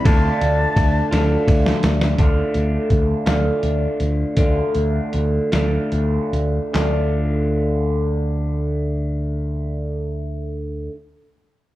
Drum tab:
RD |x-x-x-x-x-x-|------------|------------|------------|
HH |------------|x-x-x-x-x-x-|x-x-x-x-x-x-|------------|
CP |------------|------------|------------|x-----------|
SD |------o--ooo|------o-----|------o-----|o-----------|
BD |o---o---o---|o---o-------|o-----------|------------|

RD |------------|
HH |------------|
CP |------------|
SD |------------|
BD |------------|